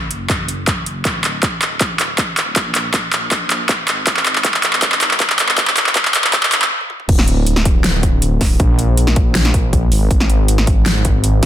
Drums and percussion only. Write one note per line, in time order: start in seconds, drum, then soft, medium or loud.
0.11 closed hi-hat medium
0.30 kick loud
0.30 clap medium
0.30 closed hi-hat medium
0.48 closed hi-hat medium
0.67 kick medium
0.67 clap medium
0.67 closed hi-hat medium
0.86 closed hi-hat medium
1.05 kick loud
1.05 clap medium
1.05 closed hi-hat medium
1.24 clap medium
1.24 closed hi-hat medium
1.43 kick loud
1.43 clap medium
1.43 closed hi-hat medium
1.62 clap medium
1.62 closed hi-hat medium
1.81 kick medium
1.81 clap medium
1.81 closed hi-hat medium
1.99 clap medium
1.99 closed hi-hat medium
2.18 kick medium
2.18 clap medium
2.18 closed hi-hat medium
2.37 clap medium
2.37 closed hi-hat medium
2.56 kick loud
2.56 clap medium
2.56 closed hi-hat medium
2.75 clap medium
2.75 closed hi-hat medium
2.94 kick loud
2.94 clap medium
2.94 closed hi-hat medium
3.13 clap medium
3.13 closed hi-hat medium
3.31 kick loud
3.31 clap medium
3.31 closed hi-hat medium
3.50 clap medium
3.50 closed hi-hat medium
3.69 kick loud
3.69 clap medium
3.69 closed hi-hat medium
3.88 clap medium
3.88 closed hi-hat medium
4.07 kick loud
4.07 clap medium
4.07 closed hi-hat medium
4.17 clap medium
4.26 clap medium
4.26 closed hi-hat medium
4.36 clap medium
4.45 kick loud
4.45 clap medium
4.45 closed hi-hat medium
4.54 clap medium
4.63 clap medium
4.63 closed hi-hat medium
4.73 clap medium
4.82 kick loud
4.82 clap loud
4.82 closed hi-hat medium
4.92 clap medium
5.01 clap loud
5.01 closed hi-hat medium
5.11 clap medium
5.20 kick loud
5.20 clap loud
5.20 closed hi-hat medium
5.30 clap medium
5.39 clap loud
5.39 closed hi-hat medium
5.49 clap medium
5.58 kick loud
5.58 clap loud
5.58 closed hi-hat medium
5.68 clap loud
5.77 clap loud
5.77 closed hi-hat medium
5.86 clap medium
5.95 kick loud
5.95 clap loud
5.95 closed hi-hat medium
6.05 clap medium
6.14 clap loud
6.14 closed hi-hat medium
6.24 clap loud
6.33 kick loud
6.33 clap loud
6.33 closed hi-hat medium
6.43 clap medium
6.52 clap loud
6.52 closed hi-hat medium
6.62 clap loud
6.81 high tom medium
6.90 mid tom medium
7.00 mid tom medium
7.09 kick loud
7.09 closed hi-hat medium
7.09 crash loud
7.19 snare medium
7.28 closed hi-hat medium
7.47 closed hi-hat medium
7.56 snare medium
7.65 kick loud
7.65 closed hi-hat medium
7.84 snare loud
7.84 closed hi-hat medium
8.03 kick medium
8.03 closed hi-hat medium
8.22 closed hi-hat medium
8.41 kick loud
8.41 snare medium
8.41 open hi-hat medium
8.60 kick loud
8.60 closed hi-hat medium
8.79 closed hi-hat medium
8.97 closed hi-hat medium
9.07 snare medium
9.16 kick loud
9.16 closed hi-hat medium
9.35 snare loud
9.35 closed hi-hat medium
9.45 snare medium
9.54 kick loud
9.54 closed hi-hat medium
9.73 kick medium
9.73 closed hi-hat medium
9.92 open hi-hat medium
10.11 kick loud
10.11 closed hi-hat medium
10.20 snare medium
10.30 closed hi-hat medium
10.48 closed hi-hat medium
10.58 snare medium
10.67 kick loud
10.67 closed hi-hat medium
10.86 snare loud
10.86 closed hi-hat medium
11.05 kick medium
11.05 closed hi-hat medium
11.24 closed hi-hat medium
11.43 snare medium
11.43 open hi-hat medium